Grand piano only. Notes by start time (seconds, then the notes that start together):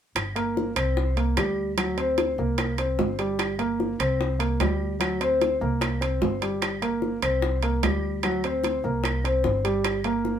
0.35 A#3 A#4
0.76 C4 C5
1.17 A#3 A#4
1.37 G3 G4
1.77 F#3 F#4
1.97 C4 C5
2.39 A#3 A#4
2.79 C4 C5
3.19 G3 G4
3.59 A#3 A#4
4.00 C4 C5
4.39 A#3 A#4
4.60 G3 G4
5.00 F#3 F#4
5.21 C4 C5
5.61 A#3 A#4
6.01 C4 C5
6.41 G3 G4
6.82 A#3 A#4
7.23 C4 C5
7.63 A#3 A#4
7.84 G3 G4
8.25 F#3 F#4
8.44 C4 C5
8.84 A#3 A#4
9.24 C4 C5
9.64 G3 G4
10.05 A#3 A#4